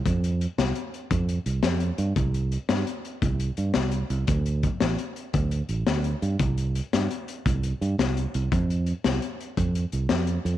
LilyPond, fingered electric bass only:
\new Staff \with { instrumentName = "Fingered electric bass" } { \clef bass \time 12/8 \key f \lydian \tempo 4. = 113 f,4. c,8 r4 f,4 c,8 f,4 g,8 | c,4. g,8 r4 c,4 g,8 c,4 c,8 | d,4. a,,8 r4 d,4 a,,8 d,4 g,8 | c,4. g,8 r4 c,4 g,8 c,4 c,8 |
f,4. c,8 r4 f,4 c,8 f,4 f,8 | }